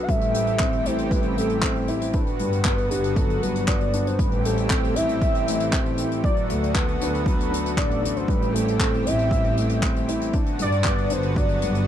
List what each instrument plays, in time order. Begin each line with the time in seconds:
Already playing: felt piano F#3 A3 B3 D4 F#4
0.02 soft synth lead F#5
0.09 double bass section A1, analog synth pad E3 A3 C4 G4, felt piano G3, soft synth lead E5, kick, closed hi-hat
0.21 closed hi-hat
0.34 felt piano A3, closed hi-hat
0.47 closed hi-hat
0.60 felt piano C4, kick, clap, closed hi-hat
0.73 closed hi-hat
0.85 double bass section A1, felt piano E4, soft synth lead C5, closed hi-hat
0.98 closed hi-hat
1.11 felt piano G3, soft synth lead B4, kick, closed hi-hat
1.22 closed hi-hat
1.37 felt piano A3, soft synth lead A4, closed hi-hat
1.49 closed hi-hat
1.62 felt piano C4, kick, clap, closed hi-hat
1.76 closed hi-hat
1.88 felt piano E4, closed hi-hat
2.01 closed hi-hat
2.13 analog synth pad D3 B3 F#4, felt piano D4, soft synth lead B4, kick, closed hi-hat
2.27 closed hi-hat
2.39 double bass section G2, felt piano G3, closed hi-hat
2.52 closed hi-hat
2.65 felt piano B3, kick, clap, closed hi-hat
2.78 closed hi-hat
2.90 double bass section G1, felt piano D4, soft synth lead G4, closed hi-hat
3.04 closed hi-hat
3.15 felt piano F#3, soft synth lead A4, kick, closed hi-hat
3.30 closed hi-hat
3.42 double bass section G1, felt piano G3, soft synth lead B4, closed hi-hat
3.56 closed hi-hat
3.67 felt piano B3, soft synth lead D5, kick, clap, closed hi-hat
3.81 closed hi-hat
3.93 felt piano D4, closed hi-hat
4.07 soft synth lead C5, closed hi-hat
4.19 double bass section A1, analog synth pad E3 A3 C4 G4, felt piano G3, soft synth lead B4, kick, closed hi-hat
4.32 closed hi-hat
4.45 felt piano A3, soft synth lead A4, closed hi-hat
4.57 closed hi-hat
4.70 felt piano C4, kick, clap, closed hi-hat
4.84 closed hi-hat
4.95 double bass section A1, felt piano E4, soft synth lead E5, closed hi-hat
5.09 closed hi-hat
5.21 kick, closed hi-hat
5.35 closed hi-hat
5.48 felt piano A3, closed hi-hat
5.60 closed hi-hat
5.73 felt piano C4, kick, clap, closed hi-hat
5.86 closed hi-hat
5.98 felt piano E4, closed hi-hat
6.12 closed hi-hat
6.23 analog synth pad D3 B3 F#4, felt piano F#3, soft synth lead D5, kick, closed hi-hat
6.36 closed hi-hat
6.50 double bass section D2, felt piano A3, closed hi-hat
6.63 closed hi-hat
6.75 felt piano B3, kick, clap, closed hi-hat
6.88 closed hi-hat
7.01 double bass section D2, felt piano D4, soft synth lead B4, closed hi-hat
7.14 closed hi-hat
7.26 felt piano F#3, soft synth lead B4, kick, closed hi-hat
7.40 closed hi-hat
7.51 felt piano D4, closed hi-hat
7.66 closed hi-hat
7.76 double bass section A1, felt piano D4, soft synth lead D5, kick, clap, closed hi-hat
7.91 closed hi-hat
8.03 felt piano D4, closed hi-hat
8.16 soft synth lead C5, closed hi-hat
8.28 double bass section A1, analog synth pad E3 C4 G4, felt piano G3, soft synth lead B4, kick, closed hi-hat
8.42 closed hi-hat
8.53 felt piano A3, soft synth lead A4, closed hi-hat
8.68 closed hi-hat
8.80 felt piano C4, kick, clap, closed hi-hat
8.94 closed hi-hat
9.05 double bass section A1, felt piano E4, soft synth lead E5, closed hi-hat
9.19 closed hi-hat
9.31 felt piano G3, kick, closed hi-hat
9.44 closed hi-hat
9.57 felt piano A3, closed hi-hat
9.69 closed hi-hat
9.82 felt piano C4, kick, clap, closed hi-hat
9.96 closed hi-hat
10.08 felt piano E4, closed hi-hat
10.21 closed hi-hat
10.33 analog synth pad D3 B3 F#4, felt piano D4, kick, closed hi-hat
10.46 closed hi-hat
10.59 double bass section G2, felt piano G3, soft synth lead D5, closed hi-hat
10.72 closed hi-hat
10.84 felt piano B3, kick, clap, closed hi-hat
10.98 closed hi-hat
11.10 double bass section G1, felt piano D4, soft synth lead C5, closed hi-hat
11.23 closed hi-hat
11.36 felt piano F#3, soft synth lead D5, kick, closed hi-hat
11.49 closed hi-hat
11.62 double bass section G1, felt piano G3, closed hi-hat
11.75 closed hi-hat